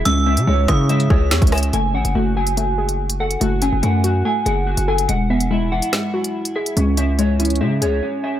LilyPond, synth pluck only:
\new Staff \with { instrumentName = "Synth pluck" } { \time 4/4 \key fis \dorian \tempo 4 = 143 gis8 cis'8 gis8 e'8 gis8 gis'4 gis''8 | a8 cis'8 a8 fis'8 a8 gis'4 a'8 | a8 cis'8 a8 fis'8 a8 gis'4 a'8 | gis8 b8 gis8 e'8 gis8 fis'4 gis'8 |
gis8 cis'8 gis8 e'8 gis8 gis'4 gis''8 | }